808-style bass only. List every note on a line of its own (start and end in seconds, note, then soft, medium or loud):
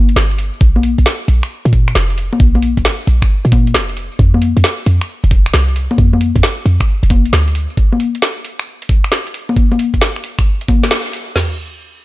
0.00 0.15 G1 medium
0.16 0.51 G1 medium
0.61 0.96 A#1 loud
0.98 1.05 A#1 medium
1.28 1.41 A#1 medium
1.65 1.94 A#2 medium
1.95 2.30 F1 medium
2.40 2.75 A#1 loud
2.77 2.84 A#1 medium
3.07 3.21 A#1 medium
3.45 3.76 A#2 medium
3.74 4.09 F1 medium
4.19 4.54 F2 loud
4.57 4.63 F2 medium
4.86 5.00 F2 medium
5.24 5.52 F1 medium
5.54 5.88 C2 medium
5.98 6.33 F2 loud
6.36 6.42 F2 medium
6.66 6.79 F2 medium
7.03 7.31 F1 medium
7.33 7.67 D2 medium